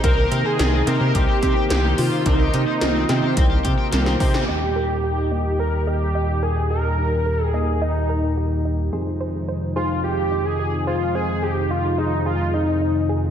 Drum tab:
HH |x-x-x-x-x-x-x-o-|x-x-x-x-x-x-x-o-|----------------|----------------|
SD |----o-------o---|----o-o-----oo-o|----------------|----------------|
BD |o-------o-o-----|o-------o-o---o-|----------------|----------------|

HH |----------------|----------------|
SD |----------------|----------------|
BD |----------------|----------------|